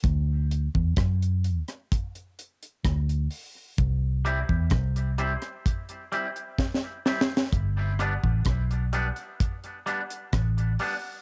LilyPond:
<<
  \new Staff \with { instrumentName = "Clean electric guitar" } { \time 4/4 \key d \mixolydian \tempo 4 = 64 r1 | r8 <g c' e'>8 r8 <g c' e'>8 r8 <g c' e'>8 r8 <g c' e'>8 | r8 <g b d'>8 r8 <g b d'>8 r8 <g b d'>8 r8 <g b d'>8 | }
  \new Staff \with { instrumentName = "Fingered electric bass" } { \clef bass \time 4/4 \key d \mixolydian d,8. e,16 fis,8. r4 r16 d,8 r8 | c,8. e,16 c,8. r2 r16 | g,,8. a,,16 b,,8. r4 r16 a,,8 r8 | }
  \new DrumStaff \with { instrumentName = "Drums" } \drummode { \time 4/4 <hh bd>8 hh16 bd16 <hh bd ss>16 hh16 hh16 <hh ss>16 <hh bd>16 hh16 hh16 hh16 <hh bd ss>16 hh16 hho8 | <hh bd>8 hh16 bd16 <hh bd ss>16 hh16 hh16 <hh ss>16 <hh bd>16 hh16 hh16 hh16 \tuplet 3/2 { <bd sn>16 sn16 r16 sn16 sn16 sn16 } | <hh bd>8 <hh ss>16 bd16 <hh bd ss>16 hh16 hh16 hh16 <hh bd>16 hh16 hh16 hh16 <hh bd ss>16 hh16 hho8 | }
>>